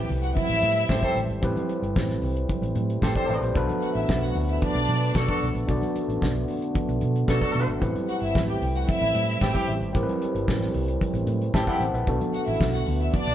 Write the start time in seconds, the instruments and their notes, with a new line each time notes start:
Already playing: french horn section G3 A3 C4, tine electric piano C4 E4 G4 B4
0.09 fingered electric bass C2, open hi-hat, low conga
0.22 string section F#4 F#5, closed hi-hat
0.35 string section E4 E5, kick, closed hi-hat, muted conga, high conga
0.49 fingered electric bass A1, closed hi-hat
0.62 fingered electric bass A2, closed hi-hat, muted conga, high conga
0.77 closed hi-hat
0.89 fingered electric bass A2, horn section G4 A4 C5, kick, snare
1.02 horn section G4 A4 C5, kick, closed hi-hat, high conga
1.15 fingered electric bass A1, closed hi-hat, low conga
1.28 fingered electric bass G#1, closed hi-hat
1.42 fingered electric bass A1, tine electric piano C4 E4 G4 B4, kick, closed hi-hat, muted conga
1.56 closed hi-hat, high conga
1.69 closed hi-hat, muted conga
1.82 fingered electric bass G1, closed hi-hat
1.96 fingered electric bass A1, kick, snare, muted conga, high conga
2.08 snare, closed hi-hat
2.22 fingered electric bass C2, open hi-hat, muted conga, low conga
2.36 closed hi-hat
2.49 kick, closed hi-hat, high conga
2.62 fingered electric bass A1, closed hi-hat
2.75 fingered electric bass A2, closed hi-hat, muted conga, high conga
2.90 closed hi-hat
3.02 fingered electric bass A2, horn section G4 A4 C5, tine electric piano G4 C5, kick, snare
3.15 horn section G4 A4 C5, tine electric piano A4 D5, kick, closed hi-hat, high conga
3.29 fingered electric bass A1, tine electric piano B4 E5, closed hi-hat, muted conga, low conga
3.42 fingered electric bass A#1, tine electric piano G4 C5, closed hi-hat
3.54 fingered electric bass B1, french horn section D3 B3, tine electric piano D4 F#4 A4 B4, kick, closed hi-hat, muted conga
3.69 closed hi-hat, high conga
3.82 string section F#4 F#5, closed hi-hat
3.95 fingered electric bass A1, string section E4 E5, closed hi-hat
4.08 fingered electric bass B1, kick, snare, muted conga, high conga
4.21 string section F#4 F#5, closed hi-hat
4.35 fingered electric bass D2, open hi-hat, muted conga, low conga
4.48 string section E4 E5, closed hi-hat
4.62 string section D4 D5, kick, closed hi-hat, muted conga, high conga
4.75 fingered electric bass B1, closed hi-hat
4.88 fingered electric bass B2, closed hi-hat, muted conga, high conga
5.03 closed hi-hat
5.15 fingered electric bass B2, horn section D4 F#4 A4, kick, snare
5.28 horn section D4 F#4 A4, kick, closed hi-hat, high conga
5.42 fingered electric bass B1, closed hi-hat, low conga
5.55 fingered electric bass A#1, closed hi-hat
5.67 fingered electric bass B1, tine electric piano D4 F#4 A4 D5, kick, closed hi-hat, muted conga, low conga
5.82 closed hi-hat, high conga
5.95 closed hi-hat, muted conga
6.08 fingered electric bass A1, closed hi-hat
6.21 fingered electric bass B1, kick, snare, muted conga, high conga
6.35 closed hi-hat
6.48 open hi-hat, muted conga, low conga
6.62 closed hi-hat
6.74 kick, closed hi-hat, high conga
6.89 fingered electric bass B1, closed hi-hat
7.01 fingered electric bass B2, closed hi-hat, muted conga, high conga
7.16 closed hi-hat
7.28 fingered electric bass B2, tine electric piano D4 F#4 A4 B4, horn section D4 F#4 A4, kick, snare, muted conga
7.42 horn section D4 F#4 A4, kick, closed hi-hat, high conga
7.55 fingered electric bass B2, open hi-hat, low conga
7.68 fingered electric bass G#1, closed hi-hat
7.80 fingered electric bass A1, french horn section G3 C4, tine electric piano C4 E4 G4 B4, kick, closed hi-hat
7.95 closed hi-hat, high conga
8.08 string section F#4 F#5, closed hi-hat
8.21 fingered electric bass G1, string section E4 E5, closed hi-hat
8.35 fingered electric bass A1, kick, snare, high conga
8.48 string section G4 G5, closed hi-hat
8.61 fingered electric bass C2, open hi-hat, low conga
8.75 string section F#4 F#5, closed hi-hat
8.88 string section E4 E5, kick, closed hi-hat, muted conga, high conga
9.01 fingered electric bass A1, closed hi-hat
9.15 fingered electric bass A2, closed hi-hat, high conga
9.29 closed hi-hat
9.41 fingered electric bass A2, horn section C4 E4 G4, kick, snare
9.54 horn section C4 E4 G4, kick, closed hi-hat, high conga
9.68 fingered electric bass A1, closed hi-hat, low conga
9.81 fingered electric bass G#1, closed hi-hat
9.93 fingered electric bass A1, tine electric piano C4 E4 G4 A#4, kick, closed hi-hat, muted conga
10.03 tine electric piano B4
10.08 closed hi-hat, high conga
10.22 closed hi-hat
10.35 fingered electric bass G1, closed hi-hat
10.48 fingered electric bass A1, kick, snare, high conga
10.61 snare, closed hi-hat
10.74 fingered electric bass C2, open hi-hat, muted conga, low conga
10.88 closed hi-hat
11.01 kick, closed hi-hat, muted conga, high conga
11.13 fingered electric bass A1, closed hi-hat
11.27 fingered electric bass A2, closed hi-hat, high conga
11.41 closed hi-hat
11.54 fingered electric bass A2, horn section C4 E4 G4, tine electric piano E5 A5, kick, snare
11.67 horn section C4 E4 G4, tine electric piano C5 F#5, kick, closed hi-hat, high conga
11.80 fingered electric bass A1, closed hi-hat, muted conga, low conga
11.94 fingered electric bass A#1, tine electric piano B4 E5, closed hi-hat
12.06 fingered electric bass B1, french horn section D3 A3 B3, tine electric piano B3 D4 F#4 A4, kick, closed hi-hat
12.21 closed hi-hat, high conga
12.33 string section F#4 F#5, closed hi-hat
12.46 fingered electric bass A1, string section E4 E5, closed hi-hat
12.60 fingered electric bass B1, kick, snare, muted conga, high conga
12.72 string section F#4 F#5, snare, closed hi-hat
12.86 fingered electric bass D2, open hi-hat, muted conga, low conga
13.00 string section E4 E5, closed hi-hat
13.13 string section D4 D5, kick, closed hi-hat, high conga
13.27 fingered electric bass B1, closed hi-hat